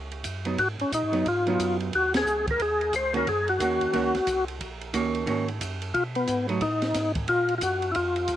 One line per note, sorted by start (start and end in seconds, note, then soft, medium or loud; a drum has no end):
0.00 0.23 C#2 medium
0.12 ride soft
0.24 0.57 F#2 medium
0.24 kick soft
0.24 hi-hat pedal medium
0.24 ride medium
0.45 0.57 F#3 medium
0.45 0.57 B3 medium
0.45 0.57 D#4 medium
0.45 ride soft
0.58 0.77 G#2 medium
0.58 0.68 F#4 medium
0.58 kick soft
0.58 ride medium
0.79 0.85 G#2 soft
0.79 0.92 C#4 medium
0.79 ride soft
0.92 1.03 A#2 medium
0.92 1.27 D#4 medium
0.92 kick soft
0.92 hi-hat pedal medium
0.92 ride medium
1.03 1.14 G#2 soft
1.12 1.24 F#2 medium
1.12 1.23 F#3 medium
1.12 1.24 B3 medium
1.12 1.24 D#4 medium
1.12 ride soft
1.26 1.58 G#2 medium
1.26 1.77 F4 medium
1.26 kick soft
1.26 ride medium
1.46 1.90 F#3 medium
1.46 1.90 B3 medium
1.46 1.90 D#4 medium
1.46 ride soft
1.59 1.91 F#2 medium
1.59 kick soft
1.59 hi-hat pedal soft
1.59 ride medium
1.80 ride soft
1.93 2.25 D#2 medium
1.93 2.13 F#4 medium
1.93 kick soft
1.93 ride soft
2.14 2.46 G#4 medium
2.14 snare medium
2.14 ride medium
2.25 2.58 C#2 medium
2.25 hi-hat pedal soft
2.47 2.61 A#4 medium
2.47 kick soft
2.47 ride soft
2.60 2.92 D#2 medium
2.60 2.95 G#4 medium
2.60 kick soft
2.60 ride medium
2.81 ride soft
2.93 3.25 C#2 medium
2.93 3.14 C5 medium
2.93 kick soft
2.93 hi-hat pedal medium
2.93 ride medium
3.13 3.25 D#3 medium
3.13 3.25 A#3 medium
3.13 3.25 C#4 medium
3.13 3.25 F#4 medium
3.13 3.28 A#4 medium
3.13 ride soft
3.27 3.59 F#2 medium
3.27 3.49 G#4 loud
3.27 kick soft
3.27 ride soft
3.48 4.45 F#4 medium
3.48 ride soft
3.59 3.79 D#2 medium
3.59 3.92 D#3 soft
3.59 3.92 A#3 soft
3.59 3.92 C#4 soft
3.59 3.92 F#4 soft
3.59 kick soft
3.59 hi-hat pedal soft
3.59 ride medium
3.81 3.87 D#2 soft
3.81 ride soft
3.93 4.13 C#2 medium
3.93 4.12 D#3 medium
3.93 4.12 A#3 medium
3.93 4.12 C#4 medium
3.93 4.12 F#4 medium
3.93 kick soft
3.93 ride medium
4.14 4.21 C#2 soft
4.14 snare soft
4.14 ride soft
4.27 4.59 C2 medium
4.27 kick soft
4.27 hi-hat pedal medium
4.27 ride medium
4.48 ride soft
4.61 4.93 A#1 medium
4.61 kick soft
4.61 ride medium
4.81 ride soft
4.94 5.26 C#2 medium
4.94 5.25 D#3 medium
4.94 5.25 A#3 medium
4.94 5.26 C#4 medium
4.94 5.26 F#4 medium
4.94 kick soft
4.94 hi-hat pedal medium
4.94 ride medium
5.15 ride soft
5.26 5.60 G#2 medium
5.26 5.45 D#3 medium
5.26 5.46 A#3 medium
5.26 5.46 C#4 medium
5.26 5.46 F#4 medium
5.26 kick soft
5.26 ride soft
5.48 ride soft
5.61 5.93 F#2 medium
5.61 kick soft
5.61 hi-hat pedal medium
5.61 ride medium
5.82 ride soft
5.94 6.27 B2 medium
5.94 6.04 F4 medium
5.94 kick soft
5.94 ride soft
6.15 6.47 B3 medium
6.15 ride soft
6.27 6.60 G#2 medium
6.27 kick soft
6.27 hi-hat pedal soft
6.27 ride medium
6.48 6.59 F#3 medium
6.48 6.60 A3 medium
6.48 6.60 D#4 medium
6.48 ride soft
6.61 6.94 A2 medium
6.61 7.12 D#4 medium
6.61 kick soft
6.61 ride medium
6.82 snare soft
6.82 ride soft
6.94 7.27 G#2 medium
6.94 kick soft
6.94 snare soft
6.94 hi-hat pedal soft
6.94 ride medium
7.15 kick medium
7.15 ride soft
7.28 7.60 A#2 medium
7.28 7.55 F4 medium
7.28 kick soft
7.28 ride medium
7.49 ride soft
7.58 7.94 F#2 medium
7.58 7.62 F4 medium
7.58 kick soft
7.58 hi-hat pedal medium
7.58 ride medium
7.63 7.91 F#4 medium
7.82 ride soft
7.92 8.27 F2 medium
7.92 7.96 E4 medium
7.92 8.36 F4 medium
7.92 kick soft
7.92 ride medium
8.16 ride soft
8.28 8.36 D2 medium
8.28 kick soft
8.28 hi-hat pedal soft
8.28 ride medium